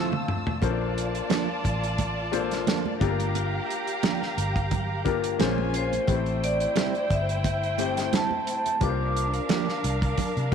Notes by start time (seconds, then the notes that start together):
Already playing: F3 A3 C4 D4 E4 F4 A4 C5 F5 A5 E6
0.12 high tom, high conga
0.28 mid tom
0.47 floor tom, high conga
0.62 A#1 A#3 C#4 F4 A4 C5 D5 A5, kick, closed hi-hat, muted conga
0.68 D4
0.98 closed hi-hat
1.15 closed hi-hat
1.30 F3 A#3 D4 A4, snare, closed hi-hat, high conga
1.64 A1, kick, closed hi-hat, muted conga
1.83 closed hi-hat
1.98 kick, closed hi-hat, muted conga
2.32 A#3 D4 F4 A4 C5, closed hi-hat, muted conga
2.51 snare, closed hi-hat
2.67 F3 A#3 D4 A4, snare, closed hi-hat, high conga
2.85 high conga
3.00 G1 A#3 D4 F4 G4 A4 F5 A#5, kick, closed hi-hat
3.08 A#4
3.20 closed hi-hat, high conga
3.35 closed hi-hat, muted conga
3.71 closed hi-hat
3.87 closed hi-hat
4.03 F3 A#3 D4 G4, snare, closed hi-hat, high conga
4.23 snare
4.38 G1, closed hi-hat, muted conga
4.56 kick, closed hi-hat
4.71 kick, closed hi-hat, muted conga, low conga
5.05 A#3 D4 F4 G4 A#4, kick, closed hi-hat, muted conga
5.24 closed hi-hat
5.39 A#1 F3 A#3 C4 C#4 F4 G#4 C5 G#5, snare, closed hi-hat, high conga
5.46 C#4
5.58 high conga
5.74 C5, closed hi-hat
5.92 closed hi-hat, high conga
6.07 A1 A3 C4 E4 G4 B4 C5 G5, kick, closed hi-hat, muted conga
6.15 C5
6.26 closed hi-hat
6.44 D5, closed hi-hat
6.60 closed hi-hat
6.76 G3 C4 E4 G4, snare, closed hi-hat, high conga
6.95 closed hi-hat
7.10 G1 E5, kick, closed hi-hat, muted conga
7.29 closed hi-hat
7.44 kick, closed hi-hat, muted conga
7.63 closed hi-hat
7.78 A3 C4 E4 G4 C5 G5, closed hi-hat, muted conga
7.97 snare, closed hi-hat
8.13 G3 C4 E4 G4 A5, snare, closed hi-hat, high conga
8.31 high conga
8.47 closed hi-hat
8.66 closed hi-hat, high conga
8.80 C2 A#3 D4 F4 G4 A#4 B4 F5 D6, kick, closed hi-hat, muted conga
8.89 C5
9.17 closed hi-hat
9.34 closed hi-hat
9.49 F3 A#3 D4 G4, snare, closed hi-hat, high conga
9.69 snare
9.84 C2, closed hi-hat, muted conga
10.02 kick, closed hi-hat
10.18 kick, closed hi-hat, muted conga, low conga
10.37 C3, closed hi-hat
10.52 A#3